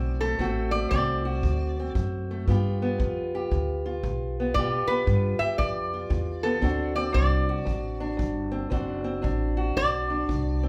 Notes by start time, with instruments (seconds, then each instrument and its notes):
Already playing: upright bass B1, steel-string acoustic guitar D2 A3 C4 F#4, resonator guitar played with a steel bar D5
0.21 steel-string acoustic guitar A3, resonator guitar played with a steel bar A4
0.39 upright bass A1, steel-string acoustic guitar D2 A3 C4 F#4, kick
0.71 steel-string acoustic guitar A3, resonator guitar played with a steel bar D5
0.91 upright bass C2, steel-string acoustic guitar D2 C4, resonator guitar played with a steel bar D5, kick
1.25 steel-string acoustic guitar F#4
1.43 upright bass D2, steel-string acoustic guitar D2, kick
1.80 steel-string acoustic guitar C4
1.95 steel-string acoustic guitar D2, upright bass F#2, kick
2.31 steel-string acoustic guitar A3
2.48 upright bass G2, steel-string acoustic guitar G2 B3 F4 G4, kick
2.82 steel-string acoustic guitar B3
2.98 upright bass F2, steel-string acoustic guitar G2 F4, kick
3.35 steel-string acoustic guitar G4
3.51 upright bass D2, steel-string acoustic guitar G2, kick
3.86 steel-string acoustic guitar F4
4.03 upright bass B1, steel-string acoustic guitar G2, kick
4.40 steel-string acoustic guitar B3
4.54 steel-string acoustic guitar G2 B3 F4, upright bass B2, resonator guitar played with a steel bar D5, kick
4.59 steel-string acoustic guitar G4
4.87 steel-string acoustic guitar B3, resonator guitar played with a steel bar B4, muted upright bass stroke
5.06 steel-string acoustic guitar G2 F4, upright bass G2, kick
5.39 steel-string acoustic guitar G4, resonator guitar played with a steel bar E5, muted upright bass stroke
5.58 upright bass F2, steel-string acoustic guitar G2, resonator guitar played with a steel bar D5, kick
5.94 steel-string acoustic guitar F4
6.10 upright bass E2, steel-string acoustic guitar G2, kick
6.43 steel-string acoustic guitar B3, resonator guitar played with a steel bar A4
6.61 steel-string acoustic guitar D2 C4 D4 F#4, upright bass D2, kick
6.96 steel-string acoustic guitar C4, resonator guitar played with a steel bar D5
7.12 upright bass C2, steel-string acoustic guitar D2 D4, resonator guitar played with a steel bar D5, kick
7.49 steel-string acoustic guitar F#4
7.65 upright bass A1, steel-string acoustic guitar D2, kick
8.00 steel-string acoustic guitar D4
8.17 upright bass G1, steel-string acoustic guitar D2, kick
8.51 steel-string acoustic guitar C4
8.70 upright bass F#1, steel-string acoustic guitar D2 C4 D4 F#4, kick
9.04 steel-string acoustic guitar C4
9.22 upright bass A1, steel-string acoustic guitar D2 D4, kick
9.57 steel-string acoustic guitar F#4
9.76 upright bass B1, steel-string acoustic guitar D2, resonator guitar played with a steel bar D5, kick
10.10 steel-string acoustic guitar D4
10.28 upright bass C2, steel-string acoustic guitar D2, kick
10.63 steel-string acoustic guitar C4